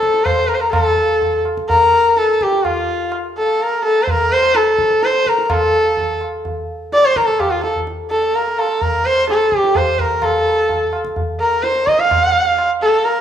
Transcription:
Already playing: A4
0.03 tabla ke
0.14 tabla te
0.24 C5, tabla na, tabla ge
0.47 A#4
0.55 C5
0.60 A#4
0.72 A#4, tabla na, tabla ge
0.83 A4
1.21 tabla tin, tabla ge
1.45 tabla na
1.57 tabla ke
1.69 A#4, tabla tin, tabla ge
2.17 A4, tabla te
2.29 tabla te
2.41 G4, tabla ke
2.52 tabla te
2.65 F4, tabla na, tabla ge
3.12 tabla na
3.38 A4
3.60 A#4, tabla tin
3.84 A4
4.03 C5
4.07 A#4, tabla tin, tabla ge
4.32 C5
4.55 A4, tabla te
4.67 tabla te
4.79 tabla ke
4.90 tabla te
5.03 C5, tabla te
5.14 tabla te
5.26 A#4, tabla ke
5.38 tabla te
5.45 A#4
5.50 A4, tabla na, tabla ge
5.97 tabla tin, tabla ge
6.21 tabla na
6.45 tabla tin, tabla ge
6.92 D5, tabla te
7.04 C5, tabla te
7.16 A#4, tabla ke
7.27 A4, tabla te
7.39 G4, tabla na, tabla ge
7.51 F4
7.63 A4, tabla te
7.76 tabla ge
7.87 tabla te
8.10 A4, tabla te
8.35 A#4, tabla tin
8.59 A4, tabla na
8.81 A#4, tabla tin, tabla ge
9.06 C5
9.29 A4, tabla te
9.40 tabla te
9.52 tabla ke
9.58 G4
9.64 tabla te
9.75 C5, tabla na, tabla ge
9.99 A#4, tabla ge
10.22 A4, tabla na, tabla ge
10.69 tabla tin, tabla ge
10.93 tabla na
11.05 tabla ke
11.16 tabla tin, tabla ge
11.40 A#4
11.63 C5, tabla te
11.76 tabla te
11.87 D#5, tabla ke
11.99 F5, tabla te
12.11 tabla na, tabla ge
12.58 tabla na
12.82 A4
13.04 A#4, tabla tin

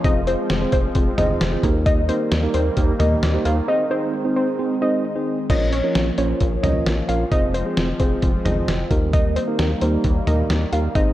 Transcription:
Already playing: F3
0.04 F1 G#3 C4 F4 G#4 C5 D#5, kick, closed hi-hat
0.27 C4 F4 G#4 C5, closed hi-hat
0.50 F1, snare, closed hi-hat
0.61 C4 F4 G#4 C5
0.72 F1 C5, kick, closed hi-hat
0.95 F1 C4 F4 G#4 C5, kick, closed hi-hat
1.18 G1 C4 F4 G#4 C5 D#5, closed hi-hat, mid tom
1.41 F1, snare, closed hi-hat
1.52 C4 F4 G#4 C5
1.63 D#2 D#3 G3 A#3 D#4 G4 A#4, kick, closed hi-hat, cowbell
1.86 D#5, kick, closed hi-hat
2.09 A#3 D#4 G4 A#4 C5, closed hi-hat
2.32 D#2, snare, closed hi-hat
2.43 A#3 D#4 G4 A#4
2.54 D#2 C5, closed hi-hat
2.77 D#2 A#3 D#4 G4 A#4, kick, closed hi-hat
2.99 D#2 A#3 D#4 G4 A#4 D#5, closed hi-hat, mid tom
3.23 D#2, snare, closed hi-hat
3.34 A#3 D#4 G4 C5
3.45 D#2 F5, closed hi-hat, cowbell
3.68 G#3 C4 D#4 G#4 C5 D#5
3.91 C4 D#4 G#4 C5
4.25 C4 D#4 G#4 C5
4.36 C5
4.59 C4 D#4 G#4 C5
4.82 C4 D#4 G#4 C5 D#5
5.16 C4 D#4 G#4 C5
5.50 A#1 F3 A#3 C#4 F4 A#4 C#5 D#5, kick, closed hi-hat, crash
5.72 C#5, closed hi-hat
5.84 C#4 F4 A#4 C#5
5.95 A#1, snare, closed hi-hat
6.18 A#1 C#4 F4 A#4 C5 C#5, closed hi-hat
6.40 A#1, kick, closed hi-hat
6.63 C2 C#4 F4 A#4 C#5 D#5, closed hi-hat, mid tom
6.86 A#1, snare, closed hi-hat
7.09 A#1 C#4 F4 A#4 C#5 F5, closed hi-hat
7.32 F1 G#3 C4 F4 G#4 C5 D#5, kick, closed hi-hat
7.54 C5, closed hi-hat
7.66 C4 F4 G#4 C5
7.77 F1, snare, closed hi-hat
8.00 F1 C4 F4 G#4 C5, kick, closed hi-hat
8.22 F1, kick, closed hi-hat
8.45 G1 C4 F4 G#4 C5 D#5, closed hi-hat, mid tom
8.68 F1, snare, closed hi-hat
8.91 D#2 D#3 G3 A#3 D#4 G4 A#4, kick, closed hi-hat
9.13 D#5, kick, closed hi-hat
9.36 C5, closed hi-hat
9.48 A#3 D#4 G4 A#4
9.59 D#2, snare, closed hi-hat
9.81 D#2 A#3 D#4 G4 A#4 C5, closed hi-hat
10.04 D#2, kick, closed hi-hat
10.27 D#2 A#3 D#4 G4 A#4 D#5, closed hi-hat, mid tom
10.50 D#2, snare, closed hi-hat
10.72 D#2 A#3 D#4 G4 A#4 F5, closed hi-hat
10.95 G#1 G#3 C4 D#4 G#4 C5 D#5, kick, closed hi-hat

